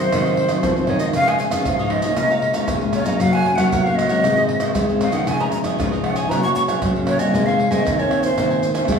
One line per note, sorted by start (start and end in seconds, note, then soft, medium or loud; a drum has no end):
0.00 0.10 D#3 medium
0.00 0.11 G#4 medium
0.00 0.10 C5 medium
0.00 0.90 C5 medium
0.11 0.62 G#2 soft
0.11 0.56 D#3 medium
0.11 0.47 F#3 soft
0.11 0.47 C4 soft
0.11 0.47 D#4 medium
0.11 0.24 F#4 soft
0.11 0.24 G#4 soft
0.11 0.24 C5 medium
0.11 0.24 D#5 soft
0.11 pandeiro medium
0.11 tamborim medium
0.11 maracas medium
0.11 surdo medium
0.25 0.35 G#4 medium
0.25 0.36 C5 medium
0.25 0.36 D#5 medium
0.25 pandeiro soft
0.25 maracas soft
0.36 muted cavaquinho stroke soft
0.36 pandeiro medium
0.49 0.72 F#3 soft
0.49 0.72 C4 medium
0.49 0.72 D#4 medium
0.49 0.88 G#4 soft
0.49 0.88 C5 medium
0.49 0.87 D#5 medium
0.49 pandeiro medium
0.49 tamborim medium
0.49 maracas medium
0.63 1.12 D#3 medium
0.63 0.87 F3 medium
0.63 pandeiro medium
0.63 tamborim medium
0.63 maracas medium
0.63 surdo medium
0.76 0.98 F#3 medium
0.76 0.99 C4 medium
0.76 0.98 D#4 medium
0.76 pandeiro soft
0.76 maracas soft
0.87 1.12 D#3 medium
0.87 1.01 F#4 medium
0.87 1.00 G#4 medium
0.87 1.00 C5 soft
0.87 0.99 C#5 medium
0.87 0.98 D#5 medium
0.87 pandeiro medium
0.87 tamborim medium
0.99 1.36 F3 medium
0.99 1.36 G#3 soft
0.99 1.36 D#4 medium
0.99 1.14 G#4 medium
0.99 1.14 C5 medium
0.99 1.13 D#5 medium
0.99 1.06 D#5 medium
0.99 pandeiro medium
0.99 maracas medium
1.13 1.64 C#3 medium
1.13 1.48 C#3 medium
1.13 1.27 F4 soft
1.13 1.27 G#4 soft
1.13 1.27 C#5 soft
1.13 1.27 D#5 medium
1.13 1.30 F5 loud
1.13 pandeiro medium
1.13 tamborim medium
1.13 maracas medium
1.13 surdo medium
1.28 1.38 G#4 medium
1.28 1.38 C#5 medium
1.28 1.39 D#5 medium
1.28 1.38 G#5 medium
1.28 pandeiro soft
1.28 tamborim medium
1.28 maracas soft
1.38 1.65 F3 soft
1.38 1.65 G#3 soft
1.38 1.65 D#4 medium
1.38 1.44 G#5 medium
1.38 muted cavaquinho stroke soft
1.38 pandeiro medium
1.38 maracas medium
1.50 1.64 C#3 medium
1.50 1.65 G#4 soft
1.50 1.64 C#5 medium
1.50 1.64 D#5 medium
1.50 1.92 F5 medium
1.50 pandeiro medium
1.50 tamborim medium
1.50 maracas medium
1.65 2.18 G#2 medium
1.65 1.78 F4 soft
1.65 1.78 G#4 soft
1.65 1.78 C#5 soft
1.65 1.78 D#5 medium
1.65 pandeiro medium
1.65 tamborim medium
1.65 maracas medium
1.65 surdo loud
1.79 2.02 F3 medium
1.79 2.02 G#3 medium
1.79 2.02 D#4 medium
1.79 2.03 G#4 medium
1.79 2.02 C#5 medium
1.79 2.01 D#5 medium
1.79 pandeiro soft
1.79 maracas soft
1.90 2.69 D#5 medium
1.90 pandeiro medium
1.90 tamborim medium
2.02 2.52 G#3 medium
2.02 2.52 A#3 medium
2.02 2.52 F4 medium
2.02 2.16 G#4 medium
2.02 2.16 C#5 medium
2.02 2.16 D#5 medium
2.02 pandeiro medium
2.02 maracas medium
2.17 2.62 C#3 medium
2.17 2.67 C#3 medium
2.17 2.30 G#4 soft
2.17 2.30 C#5 soft
2.17 2.30 F5 medium
2.17 2.29 A#5 soft
2.17 pandeiro medium
2.17 tamborim medium
2.17 maracas medium
2.17 surdo medium
2.30 2.42 C#5 medium
2.30 2.42 F5 medium
2.30 2.43 A#5 medium
2.30 pandeiro soft
2.30 maracas soft
2.42 muted cavaquinho stroke soft
2.42 pandeiro medium
2.54 2.78 G#3 medium
2.54 2.78 A#3 soft
2.54 2.78 F4 medium
2.54 2.93 C#5 soft
2.54 2.94 F5 medium
2.54 2.93 A#5 medium
2.54 pandeiro medium
2.54 tamborim medium
2.54 maracas medium
2.68 3.18 C#3 medium
2.68 3.03 C#3 medium
2.68 pandeiro medium
2.68 tamborim medium
2.68 maracas medium
2.68 surdo loud
2.81 3.04 G#3 medium
2.81 3.04 A#3 medium
2.81 3.05 F4 medium
2.81 pandeiro soft
2.81 maracas soft
2.93 3.07 G#4 soft
2.93 3.07 C#5 medium
2.93 3.06 F5 medium
2.93 3.05 A#5 soft
2.93 pandeiro medium
2.93 tamborim medium
2.93 maracas medium
3.05 3.18 C#3 medium
3.05 3.42 F#3 medium
3.05 3.42 A#3 medium
3.05 3.42 C#4 medium
3.05 3.20 C#5 medium
3.05 3.22 D#5 medium
3.05 3.20 F5 medium
3.05 3.19 A#5 medium
3.05 pandeiro medium
3.05 maracas medium
3.20 3.70 F#2 medium
3.20 3.54 F#3 medium
3.20 3.33 F#4 medium
3.20 3.34 A#4 soft
3.20 3.34 C#5 soft
3.20 3.34 F5 loud
3.20 3.33 F#5 soft
3.20 pandeiro medium
3.20 tamborim medium
3.20 maracas medium
3.20 surdo medium
3.33 3.46 A#4 medium
3.33 3.46 C#5 medium
3.33 3.46 F#5 medium
3.33 3.57 G#5 loud
3.33 pandeiro soft
3.33 tamborim medium
3.33 maracas soft
3.45 3.81 F#3 soft
3.45 3.81 A#3 medium
3.45 3.81 C#4 medium
3.45 muted cavaquinho stroke soft
3.45 pandeiro medium
3.55 3.70 F#3 medium
3.55 3.72 C#5 medium
3.55 3.85 F#5 medium
3.55 3.71 F#5 medium
3.55 pandeiro medium
3.55 tamborim medium
3.55 maracas medium
3.60 3.72 A#4 soft
3.72 4.22 C#3 medium
3.72 4.24 F#3 medium
3.72 3.85 F#4 soft
3.72 3.85 A#4 medium
3.72 3.85 C#5 medium
3.72 3.84 F#5 medium
3.72 pandeiro medium
3.72 tamborim medium
3.72 maracas medium
3.72 surdo loud
3.84 4.07 F#3 medium
3.84 4.08 A#3 medium
3.84 4.08 C#4 medium
3.84 4.09 C#5 medium
3.84 3.97 F5 medium
3.84 4.08 F#5 medium
3.84 pandeiro soft
3.84 maracas soft
3.88 4.10 A#4 soft
3.95 4.75 D#5 medium
3.95 pandeiro medium
3.95 tamborim medium
3.95 maracas medium
4.09 4.58 D#3 medium
4.09 4.59 G#3 medium
4.09 4.59 C4 medium
4.09 4.23 A#4 medium
4.09 4.23 C#5 medium
4.09 4.22 F#5 medium
4.09 pandeiro medium
4.09 maracas medium
4.24 4.74 G#2 medium
4.24 4.68 G#3 medium
4.24 4.36 D#4 soft
4.24 4.37 G#4 soft
4.24 4.37 C5 medium
4.24 4.37 D#5 medium
4.24 pandeiro medium
4.24 tamborim medium
4.24 maracas medium
4.24 surdo medium
4.38 4.48 G#4 medium
4.38 4.49 C5 medium
4.38 4.49 D#5 medium
4.38 pandeiro soft
4.38 maracas soft
4.49 muted cavaquinho stroke soft
4.49 pandeiro medium
4.60 4.75 D#3 soft
4.60 4.84 G#3 soft
4.60 4.85 C4 medium
4.60 5.01 G#4 medium
4.60 5.01 C5 medium
4.60 5.00 D#5 medium
4.60 pandeiro medium
4.60 tamborim medium
4.60 maracas medium
4.75 4.89 D#3 medium
4.75 5.09 G#3 medium
4.75 pandeiro medium
4.75 tamborim medium
4.75 maracas medium
4.75 surdo loud
4.89 5.11 D#3 medium
4.89 5.11 G#3 medium
4.89 5.12 C4 medium
4.89 pandeiro soft
4.89 maracas soft
5.01 5.13 D#4 soft
5.01 5.13 G#4 medium
5.01 5.13 C5 medium
5.01 5.11 D#5 medium
5.01 5.15 F5 medium
5.01 pandeiro medium
5.01 tamborim medium
5.01 maracas medium
5.12 5.25 D#3 medium
5.12 5.49 F3 medium
5.12 5.49 G#3 medium
5.12 5.49 D#4 medium
5.12 5.27 G#4 medium
5.12 5.26 C5 medium
5.12 5.26 D#5 medium
5.12 5.30 F#5 medium
5.12 pandeiro medium
5.12 maracas medium
5.27 5.60 C#3 medium
5.27 5.77 C#3 medium
5.27 5.40 F4 soft
5.27 5.40 G#4 soft
5.27 5.40 C#5 soft
5.27 5.39 D#5 medium
5.27 5.42 G#5 loud
5.27 pandeiro medium
5.27 tamborim medium
5.27 maracas medium
5.27 surdo medium
5.40 5.51 G#4 medium
5.40 5.51 C#5 medium
5.40 5.52 D#5 medium
5.40 5.52 A#5 medium
5.40 pandeiro soft
5.40 tamborim medium
5.40 maracas soft
5.52 5.88 F3 soft
5.52 5.88 G#3 medium
5.52 5.88 D#4 medium
5.52 5.58 A#5 medium
5.52 muted cavaquinho stroke soft
5.52 pandeiro medium
5.52 maracas medium
5.64 5.76 C#3 medium
5.64 5.78 G#4 medium
5.64 5.78 C#5 medium
5.64 5.77 D#5 medium
5.64 pandeiro medium
5.64 tamborim medium
5.64 maracas medium
5.78 6.28 G#2 medium
5.78 6.31 C#3 medium
5.78 5.91 F4 medium
5.78 5.91 G#4 medium
5.78 5.92 C#5 medium
5.78 5.90 D#5 medium
5.78 pandeiro medium
5.78 tamborim medium
5.78 maracas medium
5.78 surdo loud
5.92 6.27 F3 medium
5.92 6.27 G#3 medium
5.92 6.27 D#4 medium
5.92 6.16 G#4 soft
5.92 6.15 C#5 medium
5.92 6.14 D#5 medium
5.92 pandeiro soft
5.92 maracas soft
6.03 6.17 F#5 medium
6.03 pandeiro medium
6.03 tamborim medium
6.16 6.29 G#4 medium
6.16 6.29 C#5 medium
6.16 6.29 D#5 medium
6.16 6.31 G#5 medium
6.16 pandeiro medium
6.16 maracas medium
6.29 6.80 F#3 soft
6.29 6.75 F#3 loud
6.29 6.65 A#3 soft
6.29 6.66 C#4 medium
6.29 6.66 G#4 medium
6.29 6.42 A#4 soft
6.29 6.43 C#5 soft
6.29 6.43 F#5 soft
6.29 6.43 G#5 medium
6.29 6.43 A#5 medium
6.29 pandeiro medium
6.29 tamborim medium
6.29 maracas medium
6.29 surdo medium
6.43 6.54 C#5 medium
6.43 6.55 F#5 medium
6.43 6.55 G#5 medium
6.43 6.49 C#6 loud
6.43 pandeiro soft
6.43 maracas soft
6.55 6.61 C#6 loud
6.55 muted cavaquinho stroke soft
6.55 pandeiro medium
6.67 6.90 A#3 soft
6.67 6.91 C#4 medium
6.67 6.91 G#4 medium
6.67 7.06 C#5 soft
6.67 7.07 F#5 medium
6.67 7.06 G#5 medium
6.67 pandeiro medium
6.67 tamborim medium
6.67 maracas medium
6.82 7.31 C#3 medium
6.82 7.16 F#3 medium
6.82 pandeiro medium
6.82 tamborim medium
6.82 maracas medium
6.82 surdo medium
6.96 7.18 A#3 medium
6.96 7.18 C#4 medium
6.96 7.18 G#4 medium
6.96 pandeiro soft
6.96 maracas soft
7.07 7.19 A#4 soft
7.07 7.21 C#5 medium
7.07 7.20 C#5 medium
7.07 7.19 F#5 medium
7.07 7.18 G#5 medium
7.07 pandeiro medium
7.07 tamborim medium
7.19 7.55 D#3 medium
7.19 7.31 G3 medium
7.19 7.56 A#3 medium
7.19 7.56 C4 medium
7.19 7.33 C#5 medium
7.19 7.47 D#5 medium
7.19 7.33 F#5 soft
7.19 7.32 G#5 medium
7.19 pandeiro medium
7.19 maracas medium
7.34 7.84 G#2 medium
7.34 7.67 G#3 medium
7.34 7.46 A#4 medium
7.34 7.46 C5 soft
7.34 7.46 G#5 medium
7.34 pandeiro medium
7.34 tamborim medium
7.34 maracas medium
7.34 surdo medium
7.46 7.58 C5 medium
7.46 7.72 F5 medium
7.46 7.59 G#5 medium
7.46 pandeiro soft
7.46 tamborim medium
7.46 maracas soft
7.59 muted cavaquinho stroke soft
7.59 pandeiro medium
7.71 7.85 D#3 medium
7.71 7.83 G#3 loud
7.71 7.94 A#3 medium
7.71 7.95 C4 medium
7.71 7.85 C5 medium
7.71 8.01 D#5 medium
7.71 7.84 G#5 medium
7.71 pandeiro medium
7.71 tamborim medium
7.71 maracas medium
7.85 8.30 D#3 medium
7.85 7.98 D#3 medium
7.85 7.98 A#4 soft
7.85 7.98 C5 soft
7.85 7.98 G#5 medium
7.85 pandeiro medium
7.85 tamborim medium
7.85 maracas medium
7.85 surdo loud
7.99 8.34 D#3 medium
7.99 8.34 A#3 medium
7.99 8.34 C4 medium
7.99 8.24 C5 medium
7.99 8.24 C#5 medium
7.99 8.22 G#5 medium
7.99 pandeiro soft
7.99 maracas soft
8.11 pandeiro medium
8.11 tamborim medium
8.23 8.98 C5 medium
8.23 8.37 C5 medium
8.23 8.36 G#5 medium
8.23 pandeiro medium
8.23 maracas medium
8.38 8.87 G#2 medium
8.38 8.82 D#3 medium
8.38 8.62 D#3 soft
8.38 8.63 A#3 medium
8.38 8.63 C4 medium
8.38 8.50 A#4 soft
8.38 8.50 C5 soft
8.38 8.50 G#5 soft
8.38 pandeiro medium
8.38 tamborim medium
8.38 maracas medium
8.38 surdo medium
8.51 8.62 C5 soft
8.51 8.62 G#5 medium
8.51 pandeiro soft
8.51 maracas soft
8.62 muted cavaquinho stroke soft
8.62 pandeiro medium
8.62 maracas medium
8.74 8.88 D#3 medium
8.74 8.98 A#3 medium
8.74 8.98 C4 medium
8.74 8.99 C5 medium
8.74 8.99 G#5 medium
8.74 pandeiro medium
8.74 tamborim medium
8.74 maracas medium
8.85 8.99 D#3 medium
8.85 8.99 G#3 medium
8.85 pandeiro medium
8.85 tamborim medium
8.85 maracas medium
8.85 surdo loud
8.92 tamborim medium